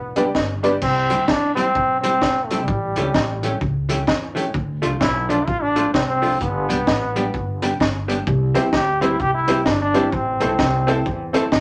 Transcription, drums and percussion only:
0.16 closed hi-hat
0.35 kick, snare
0.64 closed hi-hat
0.82 kick, crash
1.10 closed hi-hat
1.28 kick, snare
1.57 closed hi-hat
1.75 kick
2.04 closed hi-hat
2.21 kick, snare
2.51 closed hi-hat
2.68 kick
2.96 closed hi-hat
3.14 kick, snare
3.43 closed hi-hat
3.61 kick
3.89 closed hi-hat
4.07 kick, snare
4.37 closed hi-hat
4.54 kick
4.83 closed hi-hat
5.01 kick, snare
5.30 closed hi-hat
5.48 kick
5.76 closed hi-hat
5.94 kick, snare
6.23 open hi-hat
6.41 kick, hi-hat pedal
6.70 closed hi-hat
6.87 kick, snare
7.16 closed hi-hat
7.34 kick
7.62 closed hi-hat
7.80 kick, snare
8.09 closed hi-hat
8.27 kick
8.55 closed hi-hat
8.73 kick, snare
9.02 closed hi-hat
9.20 kick
9.48 closed hi-hat
9.66 kick, snare
9.94 closed hi-hat
10.12 kick
10.41 closed hi-hat
10.59 kick, snare
10.88 closed hi-hat
11.06 kick
11.34 closed hi-hat
11.52 kick, snare

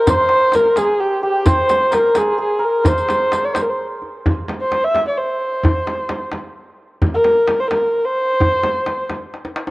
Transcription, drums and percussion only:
0.07 riq, tombak dum, frame drum
0.29 tombak tek
0.52 riq, tombak tek, frame drum
0.76 riq, tombak tek, frame drum
1.46 riq, tombak dum, frame drum
1.69 riq, tombak tek, frame drum
1.92 riq, tombak tek, frame drum
2.15 riq, tombak tek, frame drum
2.85 riq, tombak dum, frame drum
2.98 riq
3.09 riq, tombak tek, frame drum
3.32 riq, tombak tek, frame drum
3.55 riq, tombak tek, frame drum
4.02 tombak ka
4.26 tombak dum, frame drum
4.48 tombak tek, frame drum
4.72 tombak tek, frame drum
4.95 tombak tek, frame drum
5.63 frame drum, tombak dum
5.87 tombak tek, frame drum
6.09 tombak tek, frame drum
6.32 tombak tek, frame drum
7.02 tombak dum, frame drum
7.24 tombak tek, frame drum
7.47 tombak tek, frame drum
7.71 tombak tek, frame drum
8.40 frame drum, tombak dum
8.52 tombak ka
8.63 tombak tek, frame drum
8.86 tombak tek, frame drum
9.10 tombak tek, frame drum
9.34 tombak tek
9.45 tombak ka
9.56 tombak tek
9.67 tombak ka

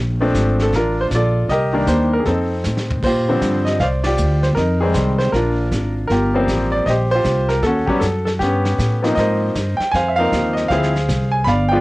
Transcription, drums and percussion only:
0.34 kick, snare, hi-hat pedal
0.59 snare
0.72 brush sweep, kick, snare
1.11 kick, snare, hi-hat pedal
1.49 brush sweep, kick, snare
1.87 kick, snare, hi-hat pedal
2.26 brush sweep, kick, snare
2.64 snare, hi-hat pedal
2.77 snare
2.91 floor tom
3.03 brush sweep, kick, snare, crash
3.41 kick, snare, hi-hat pedal
3.66 snare
3.80 brush sweep, kick, snare
4.04 snare, ride
4.18 hi-hat pedal
4.43 snare
4.56 brush sweep, kick, snare
4.94 kick, snare, hi-hat pedal
5.20 snare
5.33 brush sweep, kick, snare
5.71 kick, snare, hi-hat pedal
6.10 brush sweep, kick, snare
6.48 kick, snare, hi-hat pedal
6.86 brush sweep, kick, snare
7.24 kick, snare, hi-hat pedal
7.49 snare
7.63 brush sweep, kick, snare
7.88 kick
8.01 kick, snare, hi-hat pedal
8.27 snare
8.40 brush sweep, kick, snare
8.65 snare
8.78 kick, snare, hi-hat pedal
9.04 snare
9.17 brush sweep, kick, snare
9.55 kick, snare, hi-hat pedal
9.80 snare
9.94 brush sweep, kick, snare
10.32 kick, snare, hi-hat pedal
10.57 snare
10.70 brush sweep, kick, snare
10.83 snare
10.96 snare
11.08 kick, snare, hi-hat pedal
11.47 brush sweep, kick, snare

